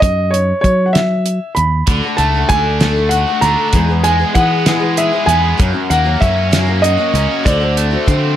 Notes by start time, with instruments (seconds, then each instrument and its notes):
0.00 fingered electric bass F#2, grand piano D#5, kick, closed hi-hat
0.31 grand piano C#5, closed hi-hat
0.61 fingered electric bass F#3, grand piano C#5, kick, closed hi-hat
0.86 grand piano F#5
0.93 grand piano E5, snare, closed hi-hat
1.26 closed hi-hat
1.55 fingered electric bass D#2, grand piano B5, closed hi-hat
1.87 fingered electric bass D2, twelve-string acoustic guitar D3 A3 D4 F#4, kick, closed hi-hat
2.04 twelve-string acoustic guitar A3 D4 F#4
2.17 fingered electric bass C#2, overdriven electric guitar A3, grand piano A5, closed hi-hat
2.34 twelve-string acoustic guitar A3 D4 F#4
2.49 fingered electric bass D2, twelve-string acoustic guitar D3 A3 D4 F#4, grand piano G#5, kick, closed hi-hat
2.80 twelve-string acoustic guitar D3 A3 D4 F#4, snare, closed hi-hat
2.96 twelve-string acoustic guitar A3 D4 F#4
3.09 overdriven electric guitar F#4, grand piano F#5, closed hi-hat
3.27 twelve-string acoustic guitar A3 D4 F#4
3.41 fingered electric bass D2, twelve-string acoustic guitar D3 A3 D4 F#4, grand piano A#5, closed hi-hat
3.72 twelve-string acoustic guitar E2 B2 E3 G#3 B3 G#4, fingered electric bass E2, kick, closed hi-hat
3.89 twelve-string acoustic guitar E3 G#3 B3 G#4
4.04 overdriven electric guitar G#3, grand piano G#5, closed hi-hat
4.19 twelve-string acoustic guitar E3 G#3 B3 G#4
4.35 twelve-string acoustic guitar E3 G#3 B3 G#4, fingered electric bass E3, grand piano F#5, kick, closed hi-hat
4.66 twelve-string acoustic guitar E2 B2 E3 G#3 B3 G#4, snare, closed hi-hat
4.80 twelve-string acoustic guitar E3 G#3 B3 G#4
4.97 overdriven electric guitar G#4, grand piano E5, closed hi-hat
5.12 twelve-string acoustic guitar E3 G#3 B3 G#4
5.26 fingered electric bass E2, twelve-string acoustic guitar E3 G#3 B3, grand piano G#5, closed hi-hat
5.30 twelve-string acoustic guitar G#4
5.58 twelve-string acoustic guitar F#2 C#3 F#3 A#3 C#4 F#4, fingered electric bass F#2, kick, closed hi-hat
5.72 twelve-string acoustic guitar F#3 A#3 C#4 F#4
5.90 fingered electric bass D#2, overdriven electric guitar A#3, grand piano F#5, closed hi-hat
6.04 twelve-string acoustic guitar F#3 A#3 C#4 F#4
6.20 fingered electric bass F#2, twelve-string acoustic guitar F#3 A#3 F#4, overdriven electric guitar C#4, grand piano E5, kick, closed hi-hat
6.51 twelve-string acoustic guitar F#2 C#3 F#3 A#3 C#4 F#4, snare, closed hi-hat
6.67 twelve-string acoustic guitar F#3 A#3 C#4 F#4
6.82 overdriven electric guitar F#4, grand piano D#5, closed hi-hat
6.97 twelve-string acoustic guitar F#3 A#3 C#4 F#4
7.14 fingered electric bass C#2, twelve-string acoustic guitar F#3 A#3 C#4 F#4, closed hi-hat
7.44 fingered electric bass D2, twelve-string acoustic guitar D3 A3 C4 F#4, grand piano D5, kick, closed hi-hat
7.60 twelve-string acoustic guitar A3 C4 F#4
7.77 overdriven electric guitar A3, closed hi-hat
7.91 twelve-string acoustic guitar A3 C4 F#4
8.06 twelve-string acoustic guitar D3 A3 C4 F#4, fingered electric bass D3, kick, closed hi-hat